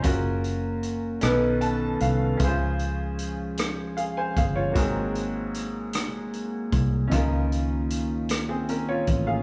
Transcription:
<<
  \new Staff \with { instrumentName = "Upright piano" } { \time 6/8 \key des \major \tempo 4. = 51 << { <c'' aes''>16 r4. r16 a''8 f''8 | r2 <aes' f''>16 <c'' aes''>16 <aes' f''>16 <f' des''>16~ | <f' des''>16 r2 r8. | r4. r16 <c' aes'>16 <des' bes'>16 <f' des''>8 <aes' f''>16 | } \\ { <des' f' ges' bes'>4. <des' ees' a' ces''>4. | <des' fes' f' aes' c''>2. | <bes c' ges' aes' bes'>2. | <des' ees' f' bes'>4. r4. | } >> }
  \new Staff \with { instrumentName = "Upright piano" } { \clef bass \time 6/8 \key des \major r4. ces4. | des4. r4. | aes,4. r4. | des4. r4. | }
  \new Staff \with { instrumentName = "Tonewheel organ" } { \time 6/8 \key des \major << { bes'4. a'4. | aes'2.~ | aes'2. | f'2. | } \\ { des'2.~ | des'2. | r2. | des'2. | } >> }
  \new Staff \with { instrumentName = "Tonewheel organ" } { \clef bass \time 6/8 \key des \major <ges bes>4. <ees ces'>4. | <f aes>2. | <ges bes>2. | <ees bes>2. | }
  \new Staff \with { instrumentName = "Fingered electric bass" } { \clef bass \time 6/8 \key des \major ges,,4. ces,4 c,8 | des,2~ des,8 g,,8 | aes,,2~ aes,,8 c,8 | des,2~ des,8 a,,8 | }
  \new DrumStaff \with { instrumentName = "Drums" } \drummode { \time 6/8 <hh bd>8 hh8 hh8 <hh ss>8 hh8 hh8 | <hh bd>8 hh8 hh8 <hh ss>8 hh8 <hh bd>8 | <hh bd>8 hh8 <hh ss>8 <hh ss>8 hh8 <hh bd>8 | <hh bd>8 hh8 hh8 <hh ss>8 hh8 <hh bd>8 | }
>>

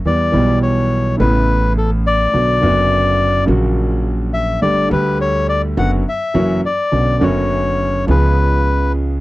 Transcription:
<<
  \new Staff \with { instrumentName = "Bandoneon" } { \time 4/4 \key b \minor \tempo 4 = 104 d''4 cis''4 b'4 a'8 d''8~ | d''2 r4. e''8 | d''8 b'8 cis''8 d''8 fis''8 e''4 d''8~ | d''8 cis''4. b'4. r8 | }
  \new Staff \with { instrumentName = "Grand piano" } { \clef bass \time 4/4 \key b \minor <e, e g b g'>8 <b,, b, e g b g'>4. <a,, a, cis a b e'>2 | <b,, b, d fis b fis'>8 <fis,, fis, d fis b fis'>4. <ais,, ais, cis fis ais fis'>2 | <g,, g, d g a g'>8 <d, d g a g'>4. <fis, d fis b fis'>8 r8 <fis, e fis ais cis' fis'>8 r8 | <b,, b, d b cis' fis'>8 <fis,, fis, d b cis' fis'>4. <cis, cis eis b cis' gis'>2 | }
  \new Staff \with { instrumentName = "Upright bass" } { \clef bass \time 4/4 \key b \minor e,8 b,,4. a,,2 | b,,8 fis,,4. ais,,2 | g,,8 d,4. fis,,8 r8 fis,,8 r8 | b,,8 fis,,4. cis,2 | }
>>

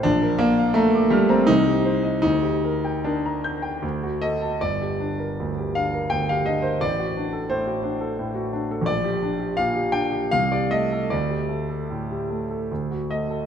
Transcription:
\new Staff \with { instrumentName = "Grand piano" } { \time 3/4 \key g \minor \tempo 4 = 80 << { d'8 bes8 a8 g16 c'16 ees'4 | ees'4 d'4. ees''8 | d''4. f''8 g''16 f''16 ees''16 c''16 | d''4 c''4. r8 |
d''4 f''8 g''8 f''16 d''16 ees''8 | d''2 r8 ees''8 | } \\ { bes,,16 bes'16 d''16 f''16 bes''16 d'''16 f'''16 bes''16 c,16 g'16 c''16 ees''16 | d,16 g'16 bes'16 g''16 bes'16 bes''16 g'''16 g''16 d,16 fis'16 a'16 a''16 | g,,16 g'16 d'16 bes'16 d,16 g'16 d'16 bes'16 d,16 g'16 d'16 bes'16 | a,,16 fis'16 d'16 a'16 a,16 fis'16 d'16 a'16 a,16 fis'16 d'16 a'16 |
bes,,16 g'16 d'16 g'16 bes,16 g'16 d'16 g'16 c,16 g'16 a16 a'16 | d,16 g'16 a16 a'16 a,16 g'16 a16 a'16 d,16 fis'16 a16 a'16 | } >> }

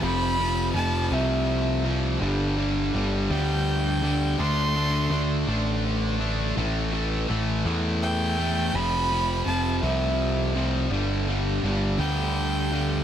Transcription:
<<
  \new Staff \with { instrumentName = "Violin" } { \time 6/8 \key f \lydian \tempo 4. = 55 b''4 a''8 e''4 r8 | r4. g''4. | c'''4 r2 | r2 g''4 |
b''4 a''8 e''4 r8 | r4. g''4. | }
  \new Staff \with { instrumentName = "Distorted electric guitar" } { \clef bass \time 6/8 \key f \lydian <f, c f>8 <f, c f>8 <f, c f>8 <f, c f>4 <f, c f>8 | <g, d g>8 <g, d g>8 <g, d g>8 <g, d g>4 <g, d g>8 | <d a d'>8 <d a d'>8 <d a d'>8 <d a d'>4 <d a d'>8 | <a, e a>8 <a, e a>8 <a, e a>8 <a, e a>4 <a, e a>8 |
<f, c f>8 <f, c f>8 <f, c f>8 <f, c f>4 <f, c f>8 | <g, d g>8 <g, d g>8 <g, d g>8 <g, d g>4 <g, d g>8 | }
  \new Staff \with { instrumentName = "Picked electric bass" } { \clef bass \time 6/8 \key f \lydian f,,4 f,,8 c,4. | g,,4 g,,8 d,4. | d,4 d,8 a,,4. | a,,4 a,,8 e,4. |
f,,4 f,,8 c,4. | g,,4 g,,8 d,4. | }
>>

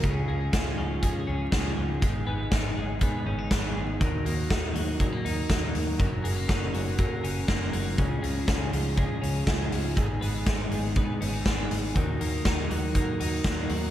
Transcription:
<<
  \new Staff \with { instrumentName = "Clean electric guitar" } { \time 4/4 \key cis \mixolydian \tempo 4 = 121 <cis gis cis' eis' gis'>8 <cis' eis' gis'>8 <cis gis cis' eis' gis'>8 <cis' eis' gis'>8 <gis cis' eis' gis'>8 <cis' eis' gis'>8 <cis gis cis' eis' gis'>8 <cis' eis' gis'>8 | <gis, dis gis b dis' gis'>8 <gis b dis' gis'>8 <gis, dis gis b dis' gis'>8 <gis b dis' gis'>8 <gis b dis' gis'>8 <gis b dis' gis'>8 <gis, dis gis b dis' gis'>8 <gis b dis' gis'>8 | <dis fis dis' fis' ais'>8 <dis' fis' ais'>8 <dis fis dis' fis' ais'>8 <dis' fis' ais'>8 <fis dis' fis' ais'>8 <dis' fis' ais'>8 <dis fis dis' fis' ais'>8 <dis' fis' ais'>8 | <fis cis' fis' ais'>8 <cis' fis' ais'>8 <fis cis' fis' ais'>8 <cis' fis' ais'>8 <fis cis' fis' ais'>8 <cis' fis' ais'>8 <fis cis' fis' ais'>8 <cis' fis' ais'>8 |
<cis gis cis' eis' gis'>8 <cis' eis' gis'>8 <cis gis cis' eis' gis'>8 <cis' eis' gis'>8 <gis cis' eis' gis'>8 <cis' eis' gis'>8 <cis gis cis' eis' gis'>8 <cis' eis' gis'>8 | <gis, dis gis b dis' gis'>8 <gis b dis' gis'>8 <gis, dis gis b dis' gis'>8 <gis b dis' gis'>8 <gis b dis' gis'>8 <gis b dis' gis'>8 <gis, dis gis b dis' gis'>8 <gis b dis' gis'>8 | <dis fis dis' fis' ais'>8 <dis' fis' ais'>8 <dis fis dis' fis' ais'>8 <dis' fis' ais'>8 <fis dis' fis' ais'>8 <dis' fis' ais'>8 <dis fis dis' fis' ais'>8 <dis' fis' ais'>8 | }
  \new Staff \with { instrumentName = "Clean electric guitar" } { \time 4/4 \key cis \mixolydian cis8 gis8 cis'8 eis8 gis8 cis'8 gis8 eis8 | gis,8 b8 dis'8 gis8 b8 cis'16 dis'16 b8 gis8 | dis8 ais8 dis'8 fis8 gis16 ais16 dis'8 ais8 fis8 | fis,8 gis16 ais16 cis'8 fis8 ais8 cis'8 ais8 fis8 |
cis8 gis8 cis'8 eis8 gis8 cis'8 gis8 eis8 | gis,8 b8 dis'8 gis8 b8 cis'16 dis'16 b8 gis8 | dis8 ais8 dis'8 fis8 ais8 dis'8 ais8 fis8 | }
  \new Staff \with { instrumentName = "Fingered electric bass" } { \clef bass \time 4/4 \key cis \mixolydian cis,8 cis,8 cis,8 cis,8. r16 cis,8 cis,8 cis,8 | gis,,8 gis,,8 gis,,8 gis,,8. r16 gis,,8 gis,,8 gis,,8 | dis,8 dis,8 dis,8 dis,8. r16 dis,8 dis,8 dis,8 | fis,,8 fis,,8 fis,,8 fis,,8. r16 fis,,8 fis,,8 fis,,8 |
cis,8 cis,8 cis,8 cis,8. r16 cis,8 cis,8 cis,8 | gis,,8 gis,,8 gis,,8 gis,,8. r16 gis,,8 gis,,8 gis,,8 | dis,8 dis,8 dis,8 dis,8. r16 dis,8 dis,8 dis,8 | }
  \new DrumStaff \with { instrumentName = "Drums" } \drummode { \time 4/4 <hh bd>4 <hh bd sn>4 <hh bd>4 <hh bd sn>4 | <hh bd>4 <hh bd sn>4 <hh bd>4 <hh bd sn>4 | <hh bd>8 hho8 <hh bd sn>8 hho8 <hh bd>8 hho8 <hh bd sn>8 hho8 | <hh bd>8 hho8 <hh bd sn>8 hho8 <hh bd>8 hho8 <hh bd sn>8 hho8 |
<hh bd>8 hho8 <hh bd sn>8 hho8 <hh bd>8 hho8 <bd sn>8 hho8 | <hh bd>8 hho8 <hh bd sn>8 hho8 <hh bd>8 hho8 <hh bd sn>8 hho8 | <hh bd>8 hho8 <hh bd sn>8 hho8 <hh bd>8 hho8 <hh bd sn>8 hho8 | }
>>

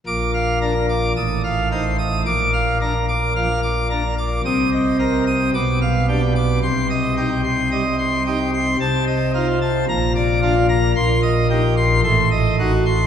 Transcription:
<<
  \new Staff \with { instrumentName = "Pipe organ" } { \time 4/4 \key bes \major \tempo 4 = 110 d'''8 f''8 bes'8 d'''8 ees'''8 f''8 c''8 ees'''8 | d'''8 f''8 bes'8 d'''8 f''8 d'''8 bes'8 d'''8 | ees'''8 ees''8 bes'8 ees'''8 d'''8 f''8 g'8 d'''8 | c'''8 ees''8 g'8 c'''8 ees''8 c'''8 g'8 c'''8 |
a''8 ees''8 f'8 a''8 bes''8 d''8 f'8 bes''8 | c'''8 ees''8 g'8 c'''8 c'''8 ees''8 fis'8 c'''8 | }
  \new Staff \with { instrumentName = "Pipe organ" } { \clef bass \time 4/4 \key bes \major << { bes,4 d'16 r8. a,4 ees'16 r8. | bes,4 d'16 r8. f16 r8. d'16 r8. | c4 c'16 r8. b,4 d'16 r8. | c4 ees'16 r8. g16 r8. ees'16 r8. |
c4 ees'16 r8. bes,4 d'16 r8. | bes,4 ees'16 r8. a,4 ees'16 r8. | } \\ { bes,,2 a,,2 | bes,,1 | c,2 b,,2 | c,1 |
c,2 bes,,2 | bes,,2 a,,2 | } >> }
>>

